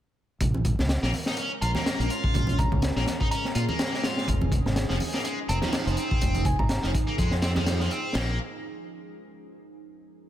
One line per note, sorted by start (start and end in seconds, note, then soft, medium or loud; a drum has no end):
0.40 0.74 A#1 loud
0.40 4.24 G#3 medium
0.40 4.24 C#4 medium
0.40 2.32 A#4 medium
0.40 kick loud
0.40 closed hi-hat medium
0.40 low conga loud
0.54 high conga medium
0.65 kick loud
0.65 closed hi-hat medium
0.65 low conga loud
0.79 0.97 C#2 medium
0.79 snare medium
0.79 low conga loud
0.89 snare loud
0.89 closed hi-hat medium
1.03 1.11 A#1 medium
1.03 1.10 A#3 medium
1.03 snare medium
1.13 open hi-hat medium
1.13 high conga medium
1.26 1.34 D#4 medium
1.26 snare medium
1.37 1.51 C#4 loud
1.37 closed hi-hat medium
1.61 1.73 A#1 medium
1.61 1.70 F4 medium
1.61 1.77 A#5 medium
1.61 closed hi-hat medium
1.75 1.98 A#3 loud
1.75 snare soft
1.75 high conga medium
1.86 snare loud
1.86 closed hi-hat medium
1.99 2.08 A#1 loud
1.99 2.09 A#3 medium
1.99 closed hi-hat soft
2.10 2.58 F4 medium
2.10 closed hi-hat medium
2.24 kick loud
2.34 2.68 A#1 loud
2.34 8.11 G#4 medium
2.34 kick loud
2.34 closed hi-hat medium
2.34 low conga loud
2.47 closed hi-hat soft
2.47 high conga medium
2.58 3.07 A#5 medium
2.58 kick loud
2.58 closed hi-hat medium
2.58 low conga medium
2.72 2.91 C#2 medium
2.72 kick loud
2.72 low conga loud
2.82 snare loud
2.82 closed hi-hat medium
2.96 3.05 A#1 medium
2.96 3.03 A#3 medium
2.96 snare soft
3.06 snare medium
3.06 closed hi-hat medium
3.06 high conga medium
3.21 3.27 D#4 medium
3.21 kick medium
3.31 3.44 C#4 loud
3.31 3.69 A#5 medium
3.31 closed hi-hat medium
3.45 snare soft
3.55 3.66 A#2 loud
3.55 3.64 F4 medium
3.55 closed hi-hat medium
3.69 3.92 A#3 loud
3.69 high conga medium
3.79 snare loud
3.79 closed hi-hat medium
3.93 4.03 A#3 medium
3.93 snare medium
4.03 4.28 F4 medium
4.03 snare loud
4.03 closed hi-hat medium
4.17 snare soft
4.28 4.61 F1 loud
4.28 8.11 F3 medium
4.28 8.11 D#4 medium
4.28 kick loud
4.28 closed hi-hat medium
4.28 low conga loud
4.41 high conga loud
4.52 kick medium
4.52 closed hi-hat medium
4.52 low conga medium
4.66 4.84 G#1 loud
4.66 snare medium
4.66 low conga medium
4.76 snare loud
4.76 closed hi-hat loud
4.90 4.98 F1 medium
4.90 4.96 F3 medium
4.90 snare medium
5.00 open hi-hat medium
5.00 high conga medium
5.14 5.21 A#3 medium
5.14 snare soft
5.25 5.38 G#3 loud
5.25 closed hi-hat medium
5.49 5.60 F1 medium
5.49 5.57 C4 medium
5.49 5.64 A#5 medium
5.49 closed hi-hat medium
5.62 5.85 F3 loud
5.62 snare soft
5.62 high conga medium
5.73 snare loud
5.73 closed hi-hat medium
5.87 5.95 F1 loud
5.87 5.96 F3 medium
5.87 closed hi-hat soft
5.97 6.44 C4 medium
5.97 closed hi-hat medium
6.11 kick loud
6.21 6.55 F1 loud
6.21 kick loud
6.21 closed hi-hat loud
6.21 low conga loud
6.34 closed hi-hat soft
6.34 high conga medium
6.45 6.56 G#5 medium
6.45 kick medium
6.45 closed hi-hat medium
6.45 low conga loud
6.59 6.78 G#1 medium
6.59 6.66 A#5 medium
6.59 kick loud
6.59 low conga loud
6.69 6.79 A#5 medium
6.69 snare loud
6.69 closed hi-hat loud
6.83 6.92 F1 medium
6.83 6.90 F3 medium
6.83 snare soft
6.94 kick loud
6.94 closed hi-hat medium
6.94 high conga medium
7.07 7.14 A#3 medium
7.18 7.87 F2 loud
7.18 7.31 G#3 loud
7.18 kick medium
7.18 closed hi-hat medium
7.31 snare soft
7.42 7.51 C4 medium
7.42 snare loud
7.42 closed hi-hat medium
7.55 7.79 F3 loud
7.55 snare soft
7.55 high conga loud
7.66 snare loud
7.66 closed hi-hat medium
7.80 7.90 F3 medium
7.80 snare soft
7.91 8.15 C4 medium
7.91 closed hi-hat medium
8.15 8.37 A#1 loud
8.15 8.38 A#3 loud
8.15 snare loud
8.15 ride bell medium